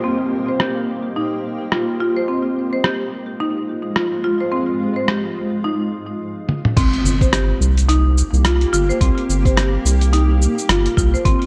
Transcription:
0.00 3.84 A#3 medium
0.00 0.47 C4 medium
0.00 3.94 G4 medium
0.00 6.21 C5 medium
0.00 6.21 D#5 medium
0.00 downlifter medium
0.48 0.59 C5 medium
0.60 1.15 G4 medium
0.60 cross-stick medium
1.16 1.71 D#4 medium
1.72 1.99 F4 medium
1.72 cross-stick medium
2.00 2.15 F4 medium
2.17 2.27 C5 medium
2.28 6.21 G#3 medium
2.28 2.71 C4 medium
2.61 6.20 F4 medium
2.73 2.84 C5 medium
2.84 3.39 G4 medium
2.84 cross-stick medium
3.40 3.95 D#4 medium
3.96 4.23 F4 medium
3.96 cross-stick loud
4.24 4.39 F4 medium
4.40 4.51 C5 medium
4.52 4.95 C4 medium
4.96 5.08 C5 medium
5.08 5.63 G4 medium
5.08 cross-stick medium
5.64 5.79 D#4 medium
6.49 high tom medium
6.65 mid tom medium
6.76 6.87 C2 loud
6.76 11.46 A#3 medium
6.76 7.20 C4 loud
6.76 kick loud
6.76 closed hi-hat medium
6.76 crash loud
6.76 impact medium
6.76 shaker soft
6.93 closed hi-hat soft
7.04 7.53 G1 medium
7.04 11.46 G4 medium
7.04 shaker medium
7.21 7.32 C5 medium
7.21 kick loud
7.21 closed hi-hat soft
7.21 shaker soft
7.33 7.88 G4 medium
7.33 cross-stick medium
7.33 closed hi-hat medium
7.33 shaker soft
7.60 8.23 C2 medium
7.60 shaker medium
7.78 closed hi-hat soft
7.78 shaker soft
7.89 8.44 D#4 medium
7.89 closed hi-hat medium
7.89 shaker soft
8.18 shaker medium
8.33 8.66 C2 medium
8.33 shaker soft
8.45 8.72 F4 medium
8.45 cross-stick loud
8.45 closed hi-hat medium
8.45 shaker soft
8.61 closed hi-hat soft
8.73 8.92 G1 medium
8.73 8.88 F4 loud
8.73 shaker medium
8.89 9.00 C5 medium
8.89 shaker soft
9.01 9.11 C2 medium
9.01 9.44 C4 loud
9.01 kick loud
9.01 closed hi-hat medium
9.01 shaker soft
9.18 closed hi-hat soft
9.29 9.78 G1 medium
9.29 shaker medium
9.45 9.56 C5 medium
9.45 kick loud
9.45 closed hi-hat soft
9.45 shaker soft
9.57 10.12 G4 medium
9.57 cross-stick loud
9.57 closed hi-hat medium
9.57 shaker soft
9.85 10.47 C2 medium
9.85 shaker medium
10.01 closed hi-hat soft
10.01 shaker soft
10.13 10.68 D#4 medium
10.13 closed hi-hat medium
10.13 shaker soft
10.42 shaker medium
10.58 shaker soft
10.69 10.88 G1 medium
10.69 10.96 F4 medium
10.69 cross-stick loud
10.69 closed hi-hat medium
10.69 shaker soft
10.86 closed hi-hat soft
10.97 11.16 C2 medium
10.97 11.12 F4 loud
10.97 kick loud
10.97 shaker medium
11.14 11.24 C5 medium
11.14 shaker soft
11.25 11.35 G#1 loud
11.25 11.46 C4 loud
11.25 kick loud
11.25 closed hi-hat medium
11.25 shaker soft
11.42 closed hi-hat soft

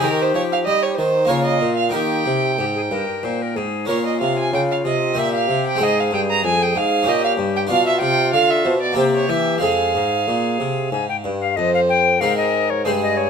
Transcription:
0.00 0.31 D#3 medium
0.00 0.36 D#3 medium
0.00 1.23 C4 medium
0.00 1.24 D#4 soft
0.00 0.98 G4 medium
0.00 1.25 G4 soft
0.00 0.23 A#4 medium
0.22 0.34 C5 medium
0.34 0.67 F3 medium
0.34 0.63 F3 medium
0.34 0.41 C#5 medium
0.52 0.58 F5 medium
0.66 0.97 G3 medium
0.66 0.95 G3 medium
0.66 0.84 D#5 medium
0.83 0.96 C#5 medium
0.97 1.28 D#3 medium
0.97 1.27 D#3 soft
0.97 1.30 C5 medium
1.25 1.61 C#3 medium
1.25 1.88 A#3 soft
1.25 1.90 F4 soft
1.25 1.94 F4 medium
1.25 1.91 A#4 soft
1.25 1.43 C#5 medium
1.29 1.58 C#3 soft
1.44 1.76 D#5 medium
1.61 1.93 A#2 soft
1.61 1.91 A#2 soft
1.76 1.92 F5 medium
1.89 2.23 A#3 soft
1.89 3.83 D#4 soft
1.89 2.52 G4 medium
1.89 3.84 A#4 soft
1.89 3.52 G5 medium
1.94 2.26 D#3 medium
1.94 2.23 D#3 soft
2.26 2.55 C3 soft
2.26 2.60 C3 soft
2.58 2.90 G#2 soft
2.58 2.88 G#2 soft
2.58 2.65 G4 medium
2.75 2.81 G#4 soft
2.91 3.05 G2 soft
2.91 3.21 G2 soft
2.91 3.25 A#4 medium
3.23 3.57 A#2 medium
3.23 3.53 A#2 soft
3.23 3.44 C5 medium
3.42 3.58 A#4 medium
3.55 3.87 G#2 soft
3.55 3.86 G#2 soft
3.55 3.88 G#4 soft
3.85 4.02 A#2 soft
3.85 4.18 A#2 soft
3.85 5.11 C#4 soft
3.85 5.18 F4 medium
3.85 5.12 A#4 soft
3.85 4.03 C#5 medium
4.06 4.20 D#5 medium
4.20 4.52 C3 medium
4.20 4.50 C3 soft
4.20 4.37 F5 medium
4.39 4.53 G#5 medium
4.52 4.84 C#3 medium
4.52 4.82 C#3 soft
4.52 4.60 G5 medium
4.71 4.77 F5 medium
4.85 5.17 C3 soft
4.85 5.14 C3 soft
4.85 5.20 D#5 medium
5.14 5.50 A#2 medium
5.14 5.45 A#2 soft
5.14 5.75 C4 soft
5.14 5.80 G4 medium
5.14 5.77 C5 soft
5.18 5.33 E5 medium
5.34 5.65 F5 medium
5.48 5.82 C3 medium
5.48 5.77 C3 soft
5.67 5.84 G5 medium
5.75 7.01 G#3 soft
5.75 7.01 C4 soft
5.75 7.02 C5 soft
5.80 6.09 G#2 soft
5.80 6.14 G#2 medium
5.80 7.09 G#4 medium
5.80 6.01 D#5 medium
6.00 6.13 F5 medium
6.11 6.40 G2 soft
6.11 6.43 G2 medium
6.11 6.20 G5 medium
6.31 6.45 A#5 medium
6.43 6.72 F2 soft
6.43 6.75 F2 medium
6.43 6.64 G#5 medium
6.62 6.78 G5 medium
6.75 7.09 G#2 medium
6.75 7.04 G#2 soft
6.75 7.10 F5 medium
7.03 7.35 A#2 medium
7.03 7.66 C#4 soft
7.03 7.67 G4 soft
7.07 7.38 A#2 medium
7.07 7.69 G4 medium
7.07 7.24 D#5 medium
7.24 7.32 F5 medium
7.38 7.66 G2 medium
7.38 7.69 G2 medium
7.56 7.62 G5 medium
7.67 7.98 B2 medium
7.67 8.01 B2 medium
7.67 8.91 D4 medium
7.67 8.92 F4 soft
7.67 8.74 F4 medium
7.71 7.86 F5 medium
7.87 8.00 E5 medium
8.01 8.30 C3 medium
8.01 8.32 C3 medium
8.01 8.32 G5 medium
8.33 8.66 D3 medium
8.33 8.62 D3 medium
8.33 8.52 F5 medium
8.50 8.66 E5 medium
8.64 8.95 B2 medium
8.64 8.94 B2 soft
8.64 8.81 C5 medium
8.82 8.96 D5 medium
8.92 9.28 C3 medium
8.92 9.58 A#3 soft
8.92 9.58 C4 soft
8.92 9.59 G4 soft
8.97 9.26 C3 soft
8.97 9.62 G4 medium
8.97 9.03 C5 medium
9.15 9.31 C#5 medium
9.28 9.60 E3 medium
9.28 9.59 E3 soft
9.28 9.61 E5 medium
9.58 9.93 F2 medium
9.58 10.23 G#3 soft
9.58 10.24 C4 soft
9.58 11.53 G#4 soft
9.58 11.21 F5 medium
9.63 9.92 F2 soft
9.63 10.90 G#4 medium
9.94 10.28 G#2 medium
9.94 10.24 G#2 soft
10.27 10.60 A#2 soft
10.27 10.57 A#2 soft
10.59 10.91 C3 soft
10.59 10.89 C3 soft
10.92 11.06 G#2 medium
10.92 11.22 G#2 soft
10.92 11.07 G#5 medium
11.09 11.16 G5 medium
11.24 11.54 G2 soft
11.24 11.56 G2 soft
11.41 11.58 F5 medium
11.56 12.22 F2 medium
11.56 12.17 F2 soft
11.56 12.17 C5 medium
11.56 11.73 D#5 medium
11.74 11.80 F5 medium
11.89 12.22 G5 medium
12.21 12.87 G#2 medium
12.21 12.81 G#2 soft
12.21 12.67 G#3 soft
12.21 12.67 C4 soft
12.21 12.68 G#4 soft
12.21 12.86 A#4 medium
12.21 12.36 F5 medium
12.37 12.72 D#5 medium
12.70 12.85 C#5 medium
12.84 13.30 G2 medium
12.84 13.30 G#3 soft
12.84 13.30 C4 soft
12.84 13.30 G#4 medium
12.84 13.30 G#4 soft
12.84 12.91 C5 medium
13.03 13.19 D#5 medium
13.17 13.30 C#5 medium

